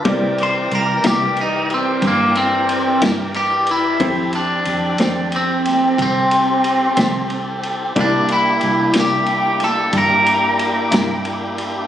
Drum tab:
RD |xxxxxxxxxxxx|xxxxxxxxxxxx|xxxxxxxxxxxx|
SD |---o-----o--|---o-o---o--|---o-o---o--|
BD |o-----o-----|o-----o-----|o-----o-----|